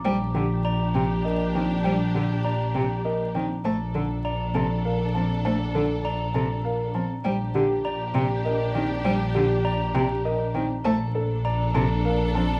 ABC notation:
X:1
M:3/4
L:1/16
Q:1/4=100
K:Eblyd
V:1 name="Glockenspiel"
z4 b z6 z | z4 b z6 z | z4 b z6 z | z4 b z6 z |
z4 b z6 z | z4 b z6 z | z4 b z6 z |]
V:2 name="Grand piano"
g z G z d z g z e z g z | g z G z d z g z e z g z | a z A z d z a z f z a z | a z A z d z a z f z a z |
g z G z d z g z e z g z | g z G z d z g z e z g z | a z A z d z a z f z a z |]
V:3 name="Grand piano"
c z G z3 G z B z C z | c z G z3 G z B z C z | c z A z3 A z B z C z | c z A z3 A z B z C z |
c z G z3 G z B z C z | c z G z3 G z B z C z | c z A z3 A z B z C z |]
V:4 name="String section"
[DG]12- | [DG]8- [DG]3 z | [DA]12- | [DA]8- [DA]3 z |
[DG]12- | [DG]8- [DG]3 z | [DA]12 |]
V:5 name="Cello" clef=bass
G, z D, z3 C, z3 E, z | G, z D, z3 C, z3 E, z | A, z D, z3 C, z3 F, z | A, z D, z3 C, z3 F, z |
G, z D, z3 C, z3 E, z | G, z D, z3 C, z3 E, z | A, z4 z C, z3 F, z |]
V:6 name="Double bass section" clef=bass
B,,,12- | B,,,12 | B,,,12- | B,,,12 |
B,,,12- | B,,,12 | B,,,12 |]